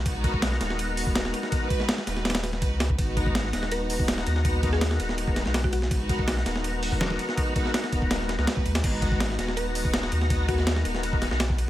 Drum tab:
CC |--------------------------------|--------------------------------|--------------------------------|--------------------------------|
RD |x---x---x---x---x-------x---x---|x---x---x---x---xxx-x---x---x---|x---x---x---x---x-------x---x---|x---x---x---x---x---x---x---x---|
HH |--------------------o-----------|--------------------------------|--------------------o-----------|--------------------------------|
SD |--------o-o-o-o---------o-o---o-|------o-o-o-o-o-ooo-o-o-----o---|--------o-o-o-o---------o-o---o-|------o-o-o---o-----o-o-o-----o-|
BD |o---o-o---------------o---------|o---o-------------------o-----o-|o---o-o---------------o---------|o---o-------------o-------o-----|

CC |--------------------------------|--------------------------------|x-------------------------------|--------------------------------|
RD |x---x---x---x---x-------x---x---|x---x---x---x---x---x---x---x-x-|x---x---x---x---x-------x---x---|x---x---x---x---x---x---x---x---|
HH |--------------------o-----------|--------------------------------|--------------------o-----------|--------------------------------|
SD |--------o-o-o-o---------o-o---o-|------o-o-o-----o-o-o-o-o-----o-|--------o-o-o-o---------o-o---o-|------o-o-o---o-----o-o-o-------|
BD |o---o-o---------------o---------|o---o-------o-o-----------o-----|o---o-o---------------o---------|o---o-------------o-------o-----|